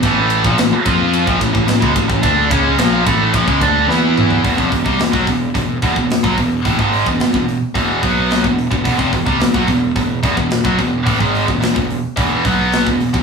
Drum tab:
RD |x-x-x-x-x-x-x-x-|x-x-x-x-x-x-----|----------------|----------------|
HH |----------------|----------------|o-o-o-o-o-o-o-o-|o-o-o-o-o-o-o-o-|
SD |----o-------o---|----o-------o---|----o-------o---|----o-------o---|
T2 |----------------|--------------o-|----------------|----------------|
FT |----------------|---------------o|----------------|----------------|
BD |o--o--o--ooo-ooo|o-o---o-ooo-----|oooo-oo-o-oo-oo-|oo-o-o--o-o--o-o|

RD |----------------|----------------|
HH |o-o-o-o-o-o-o-o-|o-o-o-o-o-o-o-o-|
SD |----o-------o---|----o-------o---|
T2 |----------------|----------------|
FT |----------------|----------------|
BD |oooo-oo-o-oo-oo-|oo-o-o--o-o--o-o|